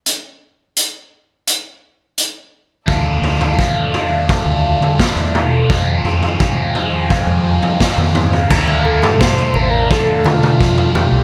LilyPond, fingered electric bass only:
\new Staff \with { instrumentName = "Fingered electric bass" } { \clef bass \time 4/4 \key d \minor \tempo 4 = 85 r1 | d,8 d,8 r4 r16 d,8 d16 r16 e,8. | f,8 f,8 r4 r16 f,8 f16 r16 f,8. | d,8. g,8 r16 a,,8 r8 d8 f,8. c,16 | }